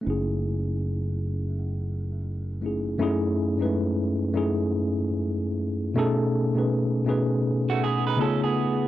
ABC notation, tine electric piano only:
X:1
M:4/4
L:1/16
Q:"Swing 16ths" 1/4=81
K:F#dor
V:1 name="Tine electric piano"
[A,CDEG]12- [A,CDEG]2 [A,CDEG]2 | [F,,A,CDEG]3 [F,,G,A,CDEB]3 z [F,,A,CDEG]6- [F,,A,CDEG] z2 | [B,,A,CDGA]3 [B,,A,CDGB]3 [B,,A,CDGB]6 [C,A,B,D^EG]3 z |]